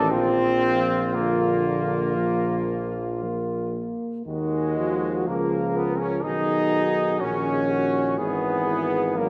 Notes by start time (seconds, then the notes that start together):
Already playing: A1 D#3 D4 A4
0.11 A#1 F3 C4 F4
1.14 D3 A#3
2.17 F3
3.23 A#3
4.26 D#2 D#3 G#3 D#4 F#4
4.78 F3 F#4
5.26 C#2 A#3 G#4 A#4
5.76 B3
5.98 C#4
6.22 B1 D#3 D#4 F#4 G#4
7.19 A#1 D#3 C#4 F#4 G#4
7.69 F#4
8.17 G#1 E3 B3 G#4
8.67 E4
9.16 F#3 A#3 F#4 A#4